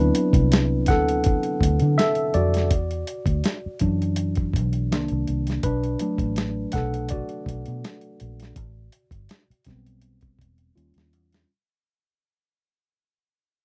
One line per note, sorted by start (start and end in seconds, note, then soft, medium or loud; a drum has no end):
0.00 0.28 F#3 soft
0.00 0.29 B3 soft
0.00 0.29 C4 soft
0.00 0.85 D4 medium
0.00 0.29 E4 medium
0.00 0.91 B4 medium
0.15 closed hi-hat medium
0.33 0.89 C2 medium
0.33 kick medium
0.33 closed hi-hat soft
0.52 snare loud
0.52 closed hi-hat medium
0.86 1.37 D2 medium
0.86 1.95 A4 medium
0.86 2.01 F#5 medium
0.86 kick medium
0.86 snare soft
0.86 closed hi-hat medium
1.08 closed hi-hat soft
1.24 kick medium
1.24 closed hi-hat medium
1.43 closed hi-hat soft
1.61 1.78 D2 medium
1.61 kick medium
1.61 closed hi-hat medium
1.80 1.96 D3 medium
1.80 closed hi-hat soft
1.98 2.33 A4 medium
1.98 2.35 E5 medium
1.98 snare medium
1.98 closed hi-hat medium
2.15 closed hi-hat soft
2.34 2.71 F2 medium
2.34 5.24 F#4 medium
2.34 5.23 D5 medium
2.34 closed hi-hat soft
2.54 snare soft
2.54 closed hi-hat soft
2.71 3.03 E2 loud
2.71 kick loud
2.71 closed hi-hat medium
2.91 closed hi-hat soft
3.07 closed hi-hat medium
3.26 3.41 D2 medium
3.26 kick medium
3.26 closed hi-hat soft
3.44 snare medium
3.44 closed hi-hat medium
3.66 muted fingered electric bass stroke soft
3.79 4.55 F#2 medium
3.79 4.87 E3 soft
3.79 4.86 F#3 soft
3.79 4.87 D4 medium
3.79 kick medium
3.79 closed hi-hat medium
4.02 closed hi-hat soft
4.16 closed hi-hat medium
4.35 kick medium
4.35 closed hi-hat soft
4.54 4.92 B1 medium
4.54 kick medium
4.54 closed hi-hat medium
4.73 closed hi-hat soft
4.92 5.08 C2 medium
4.92 5.41 D#3 soft
4.92 5.41 A#3 soft
4.92 5.41 D4 medium
4.92 snare medium
4.92 closed hi-hat medium
5.08 5.26 C2 medium
5.08 closed hi-hat soft
5.28 5.59 C2 medium
5.28 closed hi-hat soft
5.47 snare soft
5.47 closed hi-hat soft
5.63 5.95 B1 medium
5.63 6.01 D4 medium
5.63 6.69 B4 medium
5.63 kick loud
5.63 closed hi-hat medium
5.84 closed hi-hat soft
5.99 8.53 F#3 soft
5.99 8.53 A3 soft
5.99 8.53 D4 soft
5.99 closed hi-hat medium
6.18 6.65 A1 medium
6.18 kick medium
6.18 closed hi-hat soft
6.36 snare medium
6.36 closed hi-hat medium
6.72 7.22 B1 medium
6.72 7.08 A4 medium
6.72 7.11 F#5 medium
6.72 kick medium
6.72 snare soft
6.72 closed hi-hat medium
6.94 closed hi-hat soft
7.09 10.72 D5 medium
7.09 kick medium
7.09 closed hi-hat medium
7.13 10.73 F#4 medium
7.29 closed hi-hat soft
7.46 7.63 B1 medium
7.46 kick medium
7.46 closed hi-hat medium
7.66 7.82 B2 medium
7.66 closed hi-hat soft
7.84 snare medium
7.84 closed hi-hat medium
8.01 closed hi-hat soft
8.20 8.52 A#1 medium
8.20 closed hi-hat soft
8.40 snare soft
8.40 closed hi-hat soft
8.56 8.88 A1 medium
8.56 kick medium
8.56 closed hi-hat medium
8.92 closed hi-hat medium
9.11 9.26 G1 medium
9.11 kick medium
9.11 closed hi-hat soft
9.29 snare medium
9.29 closed hi-hat medium
9.50 muted fingered electric bass stroke soft
9.50 closed hi-hat soft
9.64 10.41 B1 medium
9.64 10.72 G3 soft
9.64 10.72 B3 soft
9.64 10.73 C4 soft
9.64 kick medium
9.64 snare soft
9.64 closed hi-hat medium
9.86 closed hi-hat soft
10.02 closed hi-hat medium
10.21 kick medium
10.21 closed hi-hat soft
10.39 10.71 E1 medium
10.39 kick medium
10.39 closed hi-hat medium
10.58 closed hi-hat soft
10.76 10.93 D#2 medium
10.76 11.45 G3 soft
10.76 11.46 C#4 soft
10.76 11.45 F4 soft
10.76 closed hi-hat medium
10.94 11.13 D#2 medium
10.94 snare soft
10.94 closed hi-hat soft
11.13 11.44 E2 medium
11.13 closed hi-hat soft
11.32 snare medium
11.32 closed hi-hat soft